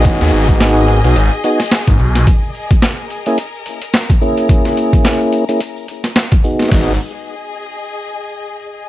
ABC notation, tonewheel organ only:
X:1
M:4/4
L:1/16
Q:"Swing 16ths" 1/4=108
K:G#m
V:1 name="Tonewheel organ"
[B,DFG]6- [B,DFG] [B,DFG] z2 [B,DFG] z4 z | z6 z [A,CEG] z6 [A,CEG]2- | [A,CEG]6- [A,CEG] [A,CEG] z6 [B,DFG]2 | [B,DFG]2 z12 z2 |]